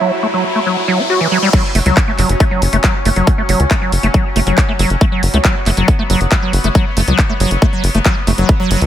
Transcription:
Already playing: synth texture F#3 E4, ambient pad F#4 C#5 E5, riser
0.01 acid bass F#3
0.23 acid bass A3
0.34 acid bass F#3
0.55 acid bass A3
0.66 acid bass F#3
0.88 acid bass F#3
0.99 acid bass G4
1.10 acid bass F#4
1.21 acid bass E3
1.32 acid bass F#3
1.42 acid bass G3
1.53 synth texture F#3 C#4, acid bass F#3, kick, closed hi-hat, crash
1.75 analog synth bass F#1, acid bass A3, open hi-hat
1.86 analog synth bass C#2, acid bass F#3, closed hi-hat
1.97 kick, clap, closed hi-hat
2.08 acid bass A3
2.18 analog synth bass F#1, acid bass F#3, clap, open hi-hat
2.29 analog synth bass F#1, closed hi-hat
2.40 acid bass A3, kick, closed hi-hat
2.51 acid bass F#3
2.62 analog synth bass F#1, open hi-hat
2.73 analog synth bass F#1, acid bass A3, closed hi-hat
2.84 acid bass F#3, kick, clap, closed hi-hat
3.05 analog synth bass F#1, acid bass A3, open hi-hat
3.16 analog synth bass F#1, acid bass F#3, closed hi-hat
3.27 kick, closed hi-hat
3.38 acid bass A3
3.49 analog synth bass F#1, acid bass F#3, open hi-hat
3.60 analog synth bass C#2, closed hi-hat
3.71 acid bass A3, kick, clap, closed hi-hat
3.82 acid bass F#3
3.92 analog synth bass F#1, open hi-hat
4.03 analog synth bass F#1, acid bass A3, closed hi-hat
4.14 acid bass F#3, kick, closed hi-hat
4.36 analog synth bass F#1, acid bass A3, open hi-hat
4.47 analog synth bass F#1, acid bass F#3, closed hi-hat
4.58 kick, clap, closed hi-hat
4.68 acid bass A3
4.79 analog synth bass F#1, acid bass F#3, open hi-hat
4.90 analog synth bass F#1, closed hi-hat
5.01 acid bass A3, synth texture B3, kick, closed hi-hat
5.12 acid bass F#3
5.23 analog synth bass F#1, open hi-hat
5.34 analog synth bass C#2, acid bass A3, closed hi-hat
5.45 acid bass F#3, kick, clap, closed hi-hat
5.66 analog synth bass F#1, acid bass A3, clap, open hi-hat
5.77 analog synth bass F#1, acid bass F#3, closed hi-hat
5.88 kick, closed hi-hat
5.99 acid bass A3
6.10 analog synth bass F#1, acid bass F#3, open hi-hat
6.21 analog synth bass F#1, closed hi-hat
6.32 acid bass A3, kick, clap, closed hi-hat
6.42 acid bass F#3
6.53 analog synth bass F#1, open hi-hat
6.64 analog synth bass F#1, acid bass A3, closed hi-hat
6.75 acid bass F#3, kick, closed hi-hat
6.97 analog synth bass F#1, acid bass A3, open hi-hat
7.08 analog synth bass C#2, acid bass F#3, closed hi-hat
7.18 kick, clap, closed hi-hat
7.29 acid bass A3
7.40 analog synth bass F#1, acid bass F#3, open hi-hat
7.51 analog synth bass F#1, closed hi-hat
7.62 acid bass A3, kick, closed hi-hat
7.73 acid bass F#3
7.84 analog synth bass F#1, open hi-hat
7.95 analog synth bass F#1, acid bass A3, closed hi-hat
8.05 acid bass F#3, kick, clap, closed hi-hat
8.27 analog synth bass F#1, acid bass A3, open hi-hat
8.38 analog synth bass F#1, acid bass F#3, closed hi-hat
8.49 synth texture C#4, kick, closed hi-hat
8.60 acid bass F#3
8.71 analog synth bass F#1, acid bass F#3, open hi-hat, ride
8.82 analog synth bass C#2, closed hi-hat

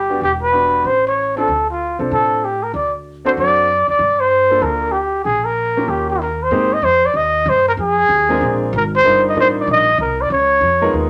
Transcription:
Already playing: upright bass G1, trumpet G4
0.10 grand piano B3 D4 F#4 G4
0.21 upright bass E1, trumpet G4
0.42 trumpet B4
0.52 grand piano B3 D4 F#4 G4
0.84 upright bass A1, trumpet C5
1.07 trumpet C#5
1.36 grand piano C4 D4 F4 A4, trumpet A4
1.48 upright bass D2
1.70 trumpet F4
1.99 upright bass C2, grand piano C4 D4 F4 A4
2.11 upright bass A2, trumpet A4
2.44 trumpet G4
2.63 trumpet A#4
2.74 upright bass D2, trumpet D5
3.25 grand piano C4 D4 F#4 A4, trumpet C5
3.37 upright bass F#2, trumpet D5
3.88 upright bass D2, trumpet D5
3.99 upright bass G2
4.20 trumpet C5
4.50 grand piano A#3 D4 F4 A4
4.61 upright bass D2, trumpet A4 A#4
4.91 trumpet G4
5.24 upright bass A#1, trumpet G#4
5.45 trumpet A#4
5.77 grand piano A#3 C#4 F4 G4
5.88 upright bass D#2, trumpet G4
6.10 trumpet G4
6.22 trumpet A#4
6.43 trumpet C5
6.51 upright bass G#2, grand piano G#3 A#3 C4 D#4 G4
6.73 trumpet D#5
6.82 upright bass F2, trumpet C5
7.06 trumpet D5
7.14 upright bass D#2, trumpet D#5
7.46 upright bass G2, trumpet C5
7.68 trumpet A#4
7.77 upright bass F2, trumpet G#4
8.09 upright bass D#2
8.29 grand piano G#3 C4 D4 F4 A#4
8.41 upright bass A#1
8.73 upright bass G#1, trumpet A#4
8.96 trumpet C5
9.04 upright bass G1, grand piano G3 D4 D#4 F4 A#4
9.29 trumpet D#5
9.35 upright bass A1, grand piano G3 D4 D#4 F4 A#4
9.40 trumpet C5
9.60 trumpet D5
9.67 upright bass A#1, trumpet D#5
9.98 upright bass C2, trumpet A#4
10.21 trumpet D5
10.30 upright bass C#2, trumpet C#5
10.61 upright bass F2
10.81 grand piano G#3 B3 D#4 F4 A#4
10.93 upright bass D#2

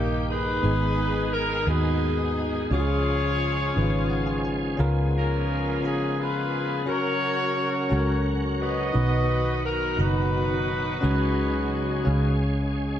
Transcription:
Already playing: fingered electric bass A#1, tine electric piano G2 A#3 D#4 G4 A#4, tonewheel organ D#3 G5, horn section A#3 D#4 G4
0.29 horn section D#4 G#4 B4
0.63 fingered electric bass G#1, tine electric piano G#2 B3 D#4 G#4, tonewheel organ G#3 B3 G#4
1.33 horn section A#4
1.67 fingered electric bass D#2, tine electric piano B3 D#4 F#4, horn section D#4 G#4 B4
2.71 fingered electric bass C#2, tine electric piano C#3 C#4 F4 F#4, tonewheel organ F3 C#4, horn section F4 G#4 C#5
2.80 tine electric piano G#4
3.74 fingered electric bass G#1, tine electric piano C#4 D#4 B4
3.82 tine electric piano F4
4.10 tine electric piano F#5
4.26 tine electric piano G#5
4.45 tine electric piano G#5
4.77 fingered electric bass C#2, tine electric piano C#3 C#4 F4 A#4, tonewheel organ B3
5.17 horn section C#4 F4 A#4
5.82 fingered electric bass G#1, tine electric piano C#4 F4 A#5, horn section G#4
6.20 horn section F4 G#4 B4
6.86 tonewheel organ C#3 F#3 C#4 F#4, tine electric piano C#4 F#4 A#4, horn section F#4 A#4 C#5
7.89 fingered electric bass C#2, tine electric piano C#4 F#4 A4
7.99 tine electric piano A#4
8.62 horn section F#4 B4 D#5
8.93 fingered electric bass B1, tine electric piano B2 D#4 F#4 B4, tonewheel organ D#3 B3
9.65 horn section A#4
9.97 fingered electric bass F#1, tine electric piano D#4 F#4 A#5, horn section D#4 F#4 B4
11.01 fingered electric bass C#2, tine electric piano C#3 C#4 F#4 G#4, tonewheel organ F#3 G#3 C#4 G#4
12.04 fingered electric bass C#2, tine electric piano C#3 C#4 G#4 F5, tonewheel organ C#3

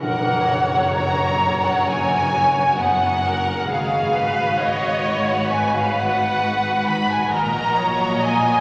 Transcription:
Already playing: harp C#4 C#5
0.02 double bass section F#1, cello section F#2, harp F#2, violin section F#4 A#4 F#5, viola section A#4, flute section F#5, tam-tam
0.26 harp C#3
0.49 harp A#3, viola section C#5
0.72 harp F#4
0.95 harp C#5, violin section A#5, flute section A#5
1.19 harp A#3
1.42 harp C#3
1.64 harp A#3, violin section F#5, flute section F#5
1.87 harp F#2, violin section G#5, flute section G#5
2.10 harp C#3
2.33 harp A#3
2.56 harp F#4
2.78 viola section B3, harp C#5, violin section F#5, flute section F#5
3.02 harp A#3
3.25 harp C#3, viola section A#4
3.47 harp A#3
3.69 double bass section G#1, harp G#2, cello section G#2, violin section F#4 B4 F5, viola section G#4, flute section F5
3.94 harp D#3
4.16 harp G#3, viola section B4
4.39 harp F#4
4.61 harp B4, viola section C#5, flute section D#5, violin section D#5
4.85 harp G#3
5.07 harp D#3
5.29 harp G#3, flute section F#5, violin section F#5
5.51 harp G#2, viola section B4, flute section G#5, violin section G#5
5.74 harp D#3, violin section F5, flute section F5
5.97 harp G#3, flute section F#5, violin section F#5
6.20 harp F#4
6.65 harp G#3
6.87 harp D#3, flute section B5, violin section B5
7.10 harp G#3, flute section G#5, violin section G#5
7.32 double bass section A#1, cello section A#2, harp A#2, violin section F#4 D#5 A#5, viola section A#4, flute section A#5
7.56 harp A#3
7.78 harp F#3, viola section C#5
8.01 harp F#4
8.23 harp D#5, viola section D#5, flute section G#5, violin section G#5
8.46 harp F#3

